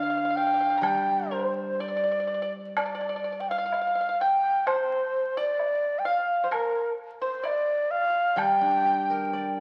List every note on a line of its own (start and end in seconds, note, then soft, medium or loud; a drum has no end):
0.00 1.79 D3 medium
0.00 0.37 F5 loud
0.00 0.09 F5 medium
0.10 0.16 F5 medium
0.17 0.23 F5 soft
0.25 0.29 F5 medium
0.30 0.36 F5 medium
0.36 0.44 F5 medium
0.36 0.84 G5 loud
0.47 0.53 F5 medium
0.54 0.59 F5 medium
0.61 0.68 F5 medium
0.70 0.76 F5 medium
0.77 0.83 A#5 medium
0.81 3.72 G3 medium
0.81 1.28 G5 medium
0.81 1.33 G5 medium
0.81 high woodblock medium
1.31 1.77 C5 medium
1.31 1.82 C5 medium
1.80 1.87 D5 medium
1.80 2.53 D5 loud
1.88 1.95 D5 medium
1.97 2.02 D5 medium
2.04 2.10 D5 soft
2.11 2.18 D5 soft
2.20 2.26 D5 soft
2.27 2.33 D5 medium
2.34 2.41 D5 soft
2.42 2.49 D5 medium
2.77 3.42 D5 medium
2.77 2.84 D5 medium
2.77 high woodblock medium
2.86 2.92 D5 soft
2.95 2.99 D5 medium
3.01 3.07 D5 soft
3.09 3.15 D5 medium
3.16 3.23 D5 soft
3.24 3.30 D5 medium
3.32 3.38 D5 soft
3.40 3.46 D5 medium
3.40 3.51 G5 medium
3.49 4.22 F5 medium
3.49 3.57 F5 medium
3.58 3.64 F5 medium
3.66 3.72 F5 medium
3.72 3.79 F5 soft
3.72 low woodblock soft
3.81 3.86 F5 medium
3.87 3.94 F5 soft
3.95 3.99 F5 soft
4.01 4.08 F5 medium
4.09 4.16 F5 medium
4.21 4.69 G5 loud
4.21 4.49 G5 medium
4.49 4.65 F5 medium
4.67 5.33 C5 medium
4.67 5.39 C5 medium
4.67 high woodblock medium
5.37 6.03 D5 medium
5.37 6.00 D5 loud
5.59 low woodblock soft
5.99 6.07 G5 medium
6.05 6.42 F5 medium
6.05 6.52 F5 loud
6.44 6.52 C5 medium
6.51 6.92 A#4 medium
6.51 high woodblock medium
7.22 7.43 C5 medium
7.22 7.46 C5 medium
7.43 8.34 D5 medium
7.43 7.92 D5 loud
7.43 low woodblock soft
7.91 8.40 F5 loud
8.36 9.60 G3 medium
8.36 9.60 G5 medium
8.36 9.60 G5 loud
8.36 high woodblock medium
8.61 9.60 D4 soft
8.85 9.60 G4 medium
9.10 9.60 A#4 medium
9.33 9.60 D5 medium